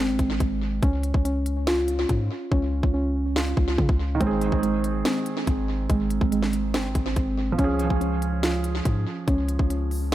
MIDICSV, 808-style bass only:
0, 0, Header, 1, 2, 480
1, 0, Start_track
1, 0, Tempo, 422535
1, 938, Time_signature, 4, 2, 24, 8
1, 11528, End_track
2, 0, Start_track
2, 0, Title_t, "808-style bass"
2, 0, Program_c, 0, 38
2, 0, Note_on_c, 0, 31, 99
2, 99, Note_on_c, 0, 32, 94
2, 116, Note_off_c, 0, 31, 0
2, 210, Note_off_c, 0, 32, 0
2, 217, Note_on_c, 0, 32, 109
2, 448, Note_off_c, 0, 32, 0
2, 458, Note_on_c, 0, 32, 109
2, 919, Note_off_c, 0, 32, 0
2, 938, Note_on_c, 0, 37, 118
2, 1284, Note_off_c, 0, 37, 0
2, 1298, Note_on_c, 0, 37, 102
2, 2335, Note_off_c, 0, 37, 0
2, 2378, Note_on_c, 0, 44, 109
2, 2609, Note_off_c, 0, 44, 0
2, 2858, Note_on_c, 0, 37, 114
2, 3204, Note_off_c, 0, 37, 0
2, 3217, Note_on_c, 0, 37, 101
2, 4024, Note_off_c, 0, 37, 0
2, 4057, Note_on_c, 0, 37, 111
2, 4288, Note_off_c, 0, 37, 0
2, 4298, Note_on_c, 0, 49, 109
2, 4413, Note_off_c, 0, 49, 0
2, 4419, Note_on_c, 0, 37, 100
2, 4764, Note_off_c, 0, 37, 0
2, 4777, Note_on_c, 0, 32, 112
2, 5124, Note_off_c, 0, 32, 0
2, 5137, Note_on_c, 0, 32, 99
2, 5714, Note_off_c, 0, 32, 0
2, 6218, Note_on_c, 0, 32, 106
2, 6679, Note_off_c, 0, 32, 0
2, 6698, Note_on_c, 0, 32, 114
2, 7044, Note_off_c, 0, 32, 0
2, 7057, Note_on_c, 0, 32, 105
2, 7658, Note_on_c, 0, 31, 99
2, 7675, Note_off_c, 0, 32, 0
2, 7779, Note_on_c, 0, 32, 95
2, 7796, Note_off_c, 0, 31, 0
2, 7890, Note_off_c, 0, 32, 0
2, 7897, Note_on_c, 0, 32, 108
2, 8128, Note_off_c, 0, 32, 0
2, 8139, Note_on_c, 0, 32, 110
2, 8600, Note_off_c, 0, 32, 0
2, 8618, Note_on_c, 0, 37, 114
2, 8964, Note_off_c, 0, 37, 0
2, 8978, Note_on_c, 0, 37, 102
2, 10015, Note_off_c, 0, 37, 0
2, 10058, Note_on_c, 0, 44, 108
2, 10289, Note_off_c, 0, 44, 0
2, 10538, Note_on_c, 0, 37, 116
2, 10884, Note_off_c, 0, 37, 0
2, 10898, Note_on_c, 0, 37, 100
2, 11528, Note_off_c, 0, 37, 0
2, 11528, End_track
0, 0, End_of_file